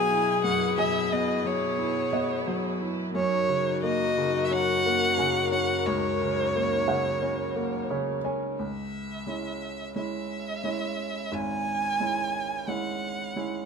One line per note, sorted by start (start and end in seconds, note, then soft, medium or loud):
0.00 0.40 B2 medium
0.00 3.10 B2 medium
0.00 0.78 F#3 medium
0.00 8.55 F#3 medium
0.00 1.12 B3 medium
0.00 0.11 E4 medium
0.00 3.10 E4 medium
0.00 2.84 G#4 loud
0.00 3.10 B4 medium
0.00 0.69 F#5 medium
0.00 0.39 G#5 loud
0.11 1.42 E4 medium
0.44 3.11 F#2 medium
0.44 0.76 F#5 medium
0.78 1.43 F#3 medium
0.78 1.14 E5 medium
0.78 2.04 G#5 medium
1.12 2.11 B3 soft
1.12 1.48 D#5 medium
1.45 2.46 F#3 medium
1.45 2.81 C#5 medium
1.79 2.80 E4 medium
2.13 3.12 B3 medium
2.13 3.40 D#5 medium
2.47 3.13 F#3 medium
2.81 3.14 E4 medium
3.14 5.82 F#2 medium
3.14 8.55 F#2 medium
3.14 8.56 D#4 medium
3.14 8.20 F#4 loud
3.14 8.56 A#4 medium
3.14 3.79 C#5 medium
3.49 4.16 C#3 soft
3.83 4.84 A#3 medium
3.83 4.46 D#5 medium
4.18 5.18 C#3 medium
4.45 4.54 E5 medium
4.51 5.50 C#4 medium
4.51 5.52 F#5 loud
4.86 6.17 A#3 medium
5.18 6.19 C#3 medium
5.18 6.45 G#5 soft
5.52 6.84 C#4 medium
5.52 5.88 F#5 loud
5.87 8.56 C#2 medium
5.87 7.91 C#5 medium
6.21 6.87 C#3 soft
6.55 7.54 A#3 soft
6.88 7.89 C#3 medium
6.88 8.16 F#5 medium
7.22 8.23 C#4 medium
7.56 8.56 A#3 soft
7.90 8.57 C#3 medium
7.90 8.22 C#5 medium
8.25 8.58 C#4 medium
8.25 8.57 G#5 medium
8.59 11.28 C#2 medium
8.64 9.94 E5 medium
9.27 9.93 G#3 soft
9.27 9.94 C#4 soft
9.27 9.94 E4 soft
9.96 10.62 G#3 soft
9.96 10.62 C#4 soft
9.96 10.62 E4 soft
9.96 11.35 E5 medium
10.64 11.30 G#3 soft
10.64 11.30 C#4 soft
10.64 11.30 E4 soft
11.32 13.65 G#1 medium
11.32 12.70 G#5 medium
12.00 12.66 G#3 soft
12.00 12.66 C#4 soft
12.00 12.66 E4 soft
12.68 13.34 G#3 soft
12.68 13.34 C#4 soft
12.68 13.34 E4 soft
12.68 13.65 F#5 medium
13.36 13.65 G#3 soft
13.36 13.65 C#4 soft
13.36 13.65 E4 soft